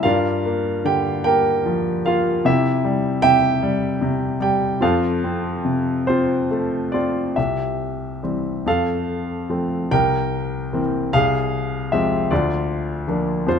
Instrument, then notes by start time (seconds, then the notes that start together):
grand piano
0.03 G2 F4 A#4 D5 F5
0.46 A#3
0.85 D3 G4 G5
1.24 A#3 G4 A#4 G5
1.66 F3
2.06 A#3 F4 F5
2.45 C3 E4 G4 E5
2.85 G3
3.22 C3 G4 E5 G5
3.63 G3
4.02 C3
4.40 G3 G4 G5
4.81 F2 F4 A4 C5 F5
5.24 C4
5.65 C3
6.07 C4 F4 C5
6.51 A3
6.92 C4 F4 D5
7.36 C2 G4 E5
8.23 E3 G3 C4
8.66 F2 A4 F5
9.49 F3 A3 C4
9.91 C2 A#4 G5
10.73 E3 A#3 C4
11.13 C2 G#4 F5
11.92 F3 G#3 C4 G4 E5
12.31 D2 F4 D5
13.08 F3 A#3 D4
13.46 F2 F4 C5